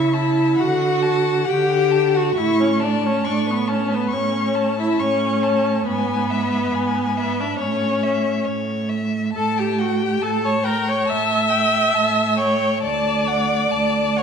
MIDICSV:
0, 0, Header, 1, 5, 480
1, 0, Start_track
1, 0, Tempo, 887574
1, 1282, Time_signature, 4, 2, 24, 8
1, 1763, Tempo, 869565
1, 6083, Tempo, 886263
1, 7784, End_track
2, 0, Start_track
2, 0, Title_t, "Violin"
2, 0, Program_c, 0, 40
2, 0, Note_on_c, 0, 85, 44
2, 74, Note_on_c, 0, 81, 40
2, 82, Note_off_c, 0, 85, 0
2, 305, Note_off_c, 0, 81, 0
2, 308, Note_on_c, 0, 78, 46
2, 552, Note_on_c, 0, 81, 43
2, 560, Note_off_c, 0, 78, 0
2, 783, Note_on_c, 0, 78, 41
2, 791, Note_off_c, 0, 81, 0
2, 1033, Note_on_c, 0, 81, 38
2, 1041, Note_off_c, 0, 78, 0
2, 1267, Note_off_c, 0, 81, 0
2, 1270, Note_on_c, 0, 85, 45
2, 1514, Note_on_c, 0, 81, 45
2, 1522, Note_off_c, 0, 85, 0
2, 1752, Note_on_c, 0, 85, 43
2, 1760, Note_off_c, 0, 81, 0
2, 1992, Note_on_c, 0, 81, 40
2, 2000, Note_off_c, 0, 85, 0
2, 2220, Note_off_c, 0, 81, 0
2, 2223, Note_on_c, 0, 85, 47
2, 2475, Note_on_c, 0, 81, 43
2, 2484, Note_off_c, 0, 85, 0
2, 2719, Note_on_c, 0, 85, 44
2, 2727, Note_off_c, 0, 81, 0
2, 2964, Note_on_c, 0, 81, 41
2, 2972, Note_off_c, 0, 85, 0
2, 3198, Note_off_c, 0, 81, 0
2, 3202, Note_on_c, 0, 80, 52
2, 3444, Note_on_c, 0, 76, 46
2, 3452, Note_off_c, 0, 80, 0
2, 3687, Note_on_c, 0, 80, 46
2, 3696, Note_off_c, 0, 76, 0
2, 3922, Note_on_c, 0, 76, 44
2, 3931, Note_off_c, 0, 80, 0
2, 4151, Note_off_c, 0, 76, 0
2, 4155, Note_on_c, 0, 73, 47
2, 4396, Note_on_c, 0, 76, 42
2, 4404, Note_off_c, 0, 73, 0
2, 4625, Note_on_c, 0, 73, 42
2, 4634, Note_off_c, 0, 76, 0
2, 4875, Note_on_c, 0, 76, 45
2, 4883, Note_off_c, 0, 73, 0
2, 5111, Note_off_c, 0, 76, 0
2, 5115, Note_on_c, 0, 81, 47
2, 5364, Note_on_c, 0, 79, 45
2, 5373, Note_off_c, 0, 81, 0
2, 5601, Note_on_c, 0, 81, 45
2, 5610, Note_off_c, 0, 79, 0
2, 5835, Note_on_c, 0, 79, 41
2, 5843, Note_off_c, 0, 81, 0
2, 6074, Note_off_c, 0, 79, 0
2, 6078, Note_on_c, 0, 81, 49
2, 6305, Note_on_c, 0, 79, 45
2, 6313, Note_off_c, 0, 81, 0
2, 6545, Note_on_c, 0, 81, 40
2, 6554, Note_off_c, 0, 79, 0
2, 6779, Note_on_c, 0, 79, 40
2, 6787, Note_off_c, 0, 81, 0
2, 7020, Note_off_c, 0, 79, 0
2, 7024, Note_on_c, 0, 81, 50
2, 7267, Note_on_c, 0, 78, 43
2, 7275, Note_off_c, 0, 81, 0
2, 7502, Note_on_c, 0, 81, 41
2, 7510, Note_off_c, 0, 78, 0
2, 7749, Note_on_c, 0, 78, 39
2, 7757, Note_off_c, 0, 81, 0
2, 7784, Note_off_c, 0, 78, 0
2, 7784, End_track
3, 0, Start_track
3, 0, Title_t, "Violin"
3, 0, Program_c, 1, 40
3, 0, Note_on_c, 1, 76, 62
3, 65, Note_off_c, 1, 76, 0
3, 75, Note_on_c, 1, 76, 54
3, 320, Note_on_c, 1, 78, 64
3, 329, Note_off_c, 1, 76, 0
3, 804, Note_on_c, 1, 79, 68
3, 812, Note_off_c, 1, 78, 0
3, 1159, Note_on_c, 1, 78, 54
3, 1167, Note_off_c, 1, 79, 0
3, 1272, Note_off_c, 1, 78, 0
3, 1275, Note_on_c, 1, 76, 55
3, 1399, Note_on_c, 1, 73, 52
3, 1407, Note_off_c, 1, 76, 0
3, 1516, Note_off_c, 1, 73, 0
3, 1519, Note_on_c, 1, 74, 55
3, 1640, Note_on_c, 1, 73, 50
3, 1648, Note_off_c, 1, 74, 0
3, 1754, Note_on_c, 1, 74, 57
3, 1762, Note_off_c, 1, 73, 0
3, 1878, Note_on_c, 1, 71, 48
3, 1886, Note_off_c, 1, 74, 0
3, 2001, Note_on_c, 1, 73, 56
3, 2009, Note_off_c, 1, 71, 0
3, 2118, Note_on_c, 1, 71, 46
3, 2126, Note_off_c, 1, 73, 0
3, 2245, Note_on_c, 1, 73, 60
3, 2253, Note_off_c, 1, 71, 0
3, 2608, Note_on_c, 1, 76, 50
3, 2616, Note_off_c, 1, 73, 0
3, 2730, Note_on_c, 1, 73, 61
3, 2738, Note_off_c, 1, 76, 0
3, 3196, Note_off_c, 1, 73, 0
3, 3200, Note_on_c, 1, 71, 60
3, 3908, Note_off_c, 1, 71, 0
3, 3918, Note_on_c, 1, 71, 53
3, 4045, Note_on_c, 1, 74, 46
3, 4053, Note_off_c, 1, 71, 0
3, 4148, Note_off_c, 1, 74, 0
3, 4151, Note_on_c, 1, 73, 56
3, 4627, Note_off_c, 1, 73, 0
3, 5128, Note_on_c, 1, 81, 64
3, 5250, Note_on_c, 1, 79, 54
3, 5258, Note_off_c, 1, 81, 0
3, 5368, Note_on_c, 1, 78, 57
3, 5376, Note_off_c, 1, 79, 0
3, 5487, Note_off_c, 1, 78, 0
3, 5494, Note_on_c, 1, 79, 51
3, 5610, Note_on_c, 1, 81, 58
3, 5618, Note_off_c, 1, 79, 0
3, 5725, Note_off_c, 1, 81, 0
3, 5728, Note_on_c, 1, 85, 55
3, 5844, Note_on_c, 1, 82, 60
3, 5852, Note_off_c, 1, 85, 0
3, 5954, Note_on_c, 1, 85, 53
3, 5962, Note_off_c, 1, 82, 0
3, 6073, Note_on_c, 1, 88, 73
3, 6081, Note_off_c, 1, 85, 0
3, 6781, Note_on_c, 1, 85, 57
3, 6789, Note_off_c, 1, 88, 0
3, 7022, Note_off_c, 1, 85, 0
3, 7025, Note_on_c, 1, 86, 63
3, 7752, Note_on_c, 1, 85, 58
3, 7760, Note_off_c, 1, 86, 0
3, 7784, Note_off_c, 1, 85, 0
3, 7784, End_track
4, 0, Start_track
4, 0, Title_t, "Viola"
4, 0, Program_c, 2, 41
4, 0, Note_on_c, 2, 64, 76
4, 78, Note_off_c, 2, 64, 0
4, 81, Note_on_c, 2, 64, 67
4, 322, Note_on_c, 2, 66, 70
4, 330, Note_off_c, 2, 64, 0
4, 793, Note_off_c, 2, 66, 0
4, 797, Note_on_c, 2, 67, 75
4, 1169, Note_on_c, 2, 66, 58
4, 1177, Note_off_c, 2, 67, 0
4, 1286, Note_on_c, 2, 64, 74
4, 1295, Note_off_c, 2, 66, 0
4, 1411, Note_on_c, 2, 61, 62
4, 1419, Note_off_c, 2, 64, 0
4, 1531, Note_on_c, 2, 62, 57
4, 1539, Note_off_c, 2, 61, 0
4, 1657, Note_on_c, 2, 61, 63
4, 1665, Note_off_c, 2, 62, 0
4, 1766, Note_on_c, 2, 62, 58
4, 1775, Note_off_c, 2, 61, 0
4, 1901, Note_on_c, 2, 59, 56
4, 1909, Note_off_c, 2, 62, 0
4, 2006, Note_on_c, 2, 61, 64
4, 2014, Note_off_c, 2, 59, 0
4, 2138, Note_on_c, 2, 59, 57
4, 2146, Note_off_c, 2, 61, 0
4, 2247, Note_on_c, 2, 61, 64
4, 2255, Note_off_c, 2, 59, 0
4, 2606, Note_off_c, 2, 61, 0
4, 2610, Note_on_c, 2, 64, 60
4, 2726, Note_off_c, 2, 64, 0
4, 2731, Note_on_c, 2, 61, 69
4, 3196, Note_off_c, 2, 61, 0
4, 3208, Note_on_c, 2, 59, 68
4, 3913, Note_off_c, 2, 59, 0
4, 3928, Note_on_c, 2, 59, 62
4, 4052, Note_on_c, 2, 62, 56
4, 4060, Note_off_c, 2, 59, 0
4, 4169, Note_on_c, 2, 61, 62
4, 4177, Note_off_c, 2, 62, 0
4, 4646, Note_off_c, 2, 61, 0
4, 5130, Note_on_c, 2, 69, 76
4, 5259, Note_on_c, 2, 67, 63
4, 5267, Note_off_c, 2, 69, 0
4, 5377, Note_on_c, 2, 66, 57
4, 5385, Note_off_c, 2, 67, 0
4, 5496, Note_on_c, 2, 67, 63
4, 5504, Note_off_c, 2, 66, 0
4, 5609, Note_on_c, 2, 69, 65
4, 5617, Note_off_c, 2, 67, 0
4, 5735, Note_on_c, 2, 73, 60
4, 5743, Note_off_c, 2, 69, 0
4, 5845, Note_on_c, 2, 70, 66
4, 5853, Note_off_c, 2, 73, 0
4, 5971, Note_on_c, 2, 73, 63
4, 5979, Note_off_c, 2, 70, 0
4, 6087, Note_on_c, 2, 76, 76
4, 6096, Note_off_c, 2, 73, 0
4, 6784, Note_off_c, 2, 76, 0
4, 6787, Note_on_c, 2, 73, 68
4, 7024, Note_off_c, 2, 73, 0
4, 7036, Note_on_c, 2, 74, 76
4, 7762, Note_on_c, 2, 73, 67
4, 7770, Note_off_c, 2, 74, 0
4, 7784, Note_off_c, 2, 73, 0
4, 7784, End_track
5, 0, Start_track
5, 0, Title_t, "Cello"
5, 0, Program_c, 3, 42
5, 0, Note_on_c, 3, 49, 50
5, 264, Note_off_c, 3, 49, 0
5, 324, Note_on_c, 3, 50, 51
5, 745, Note_off_c, 3, 50, 0
5, 806, Note_on_c, 3, 50, 53
5, 1228, Note_off_c, 3, 50, 0
5, 1280, Note_on_c, 3, 45, 60
5, 1704, Note_off_c, 3, 45, 0
5, 1760, Note_on_c, 3, 45, 53
5, 2185, Note_off_c, 3, 45, 0
5, 2240, Note_on_c, 3, 45, 53
5, 2667, Note_off_c, 3, 45, 0
5, 2723, Note_on_c, 3, 45, 57
5, 3145, Note_off_c, 3, 45, 0
5, 3204, Note_on_c, 3, 44, 55
5, 3627, Note_off_c, 3, 44, 0
5, 3680, Note_on_c, 3, 44, 49
5, 4103, Note_off_c, 3, 44, 0
5, 4164, Note_on_c, 3, 45, 49
5, 4586, Note_off_c, 3, 45, 0
5, 4645, Note_on_c, 3, 45, 51
5, 5072, Note_off_c, 3, 45, 0
5, 5133, Note_on_c, 3, 45, 57
5, 5552, Note_off_c, 3, 45, 0
5, 5606, Note_on_c, 3, 45, 51
5, 6024, Note_off_c, 3, 45, 0
5, 6083, Note_on_c, 3, 45, 49
5, 6503, Note_off_c, 3, 45, 0
5, 6556, Note_on_c, 3, 45, 54
5, 6976, Note_off_c, 3, 45, 0
5, 7030, Note_on_c, 3, 38, 57
5, 7455, Note_off_c, 3, 38, 0
5, 7513, Note_on_c, 3, 38, 47
5, 7784, Note_off_c, 3, 38, 0
5, 7784, End_track
0, 0, End_of_file